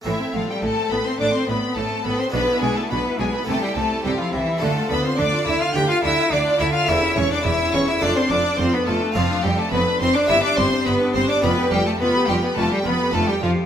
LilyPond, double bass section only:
\new Staff \with { instrumentName = "Double bass section" } { \clef bass \time 4/4 \key a \minor \tempo 4 = 106 a,,8 a,,8 a,,8 a,,8 a,,8 a,,8 a,,8 a,,8 | b,,8 b,,8 b,,8 b,,8 c,8 c,8 c,8 c,8 | d,8 d,8 d,8 d,8 d,8 d,8 d,8 d,8 | e,,8 e,,8 e,,8 e,,8 f,,8 f,,8 f,,8 f,,8 |
\key g \mixolydian f,,8 f,,8 f,,8 f,,8 g,,8 g,,8 g,,8 g,,8 | f,,8 f,,8 f,,8 f,,8 f,,8 f,,8 f,,8 f,,8 | }